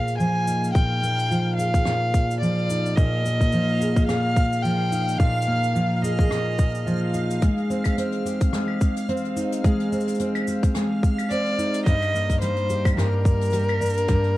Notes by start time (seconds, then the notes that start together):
Already playing: A#2 F3 A#3 G#4 F5 F6
0.08 cabasa
0.18 F3 G#5, cabasa
0.47 D#4, cabasa
0.64 cabasa
0.73 A#2 G5, kick, cabasa
1.03 A#3, cabasa
1.19 cabasa
1.30 F3, cabasa
1.56 G#4 F5, cabasa
1.74 kick, cabasa
1.85 A#2, cross-stick, cabasa
2.14 kick, cabasa
2.31 cabasa
2.40 F3 D5, cabasa
2.70 D#4, cabasa
2.86 cabasa
2.96 A#2 D#5, kick, cabasa
3.25 A#3, cabasa
3.41 kick, cabasa
3.52 F3, cabasa
3.80 G#4, cabasa
3.96 kick, cabasa
4.07 A#2 F5, cross-stick, cabasa
4.36 kick, cabasa
4.53 cabasa
4.63 F3 G5, cabasa
4.92 D#4, cabasa
5.09 cabasa
5.18 A#2 F5, kick, cabasa
5.42 cabasa
5.47 A#3
5.63 cabasa
5.75 F3, cabasa
5.97 F5
6.02 G#4 D#5, cabasa
6.19 kick, cabasa
6.31 A#2, cross-stick, cabasa
6.59 kick, cabasa
6.75 cabasa
6.86 F3, cabasa
7.14 D#4, cabasa
7.31 cabasa
7.42 G#3, kick, closed hi-hat, cabasa
7.58 closed hi-hat
7.70 C4, cabasa
7.84 kick, closed hi-hat, cabasa, claves
7.98 C4, closed hi-hat, cabasa
8.12 closed hi-hat
8.25 G4, cabasa
8.41 kick, closed hi-hat, cabasa
8.53 G#3, cross-stick, closed hi-hat, cabasa
8.68 claves
8.81 kick, cabasa
8.96 closed hi-hat, cabasa
9.09 C4, closed hi-hat
9.17 cabasa
9.25 closed hi-hat
9.36 D#4, cabasa
9.52 closed hi-hat, cabasa
9.64 G#3, kick, closed hi-hat, cabasa
9.80 closed hi-hat
9.92 C4, cabasa
10.00 cabasa
10.07 closed hi-hat, cabasa
10.15 cabasa
10.19 C4, closed hi-hat, cabasa
10.35 closed hi-hat, claves
10.47 G4, cabasa
10.63 kick, closed hi-hat, cabasa
10.74 G#3, cross-stick, closed hi-hat, cabasa
11.03 kick, cabasa
11.18 closed hi-hat, cabasa, claves
11.30 C4 D5, closed hi-hat, cabasa
11.46 closed hi-hat
11.58 D#4, cabasa
11.74 closed hi-hat, cabasa
11.86 G2 D#5, kick, closed hi-hat, cabasa
12.02 closed hi-hat, claves
12.14 A#3, cabasa
12.29 kick, closed hi-hat, cabasa
12.41 G3 C5, closed hi-hat, cabasa
12.56 closed hi-hat
12.69 G4, cabasa
12.85 kick, closed hi-hat, cabasa, claves
12.97 G2 A#4, cross-stick, closed hi-hat, cabasa
13.25 kick, cabasa
13.41 closed hi-hat, cabasa
13.45 cabasa
13.50 G3, closed hi-hat, cabasa
13.54 cabasa
13.59 cabasa
13.63 cabasa
13.68 closed hi-hat, claves
13.81 D4, cabasa
13.86 cabasa
13.89 cabasa
13.93 closed hi-hat, cabasa
13.97 cabasa
14.08 G2, kick, closed hi-hat, cabasa
14.24 closed hi-hat